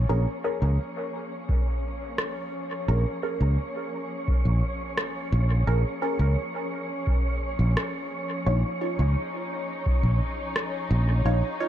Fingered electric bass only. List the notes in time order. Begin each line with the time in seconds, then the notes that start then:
0.09 A#1
0.62 C#2
2.88 A#1
3.41 C#2
4.45 A#1
5.32 A#1
5.67 A#1
6.19 C#2
7.59 A#1
8.46 A#1
8.99 C#2
10.03 A#1
10.91 A#1
11.25 A#1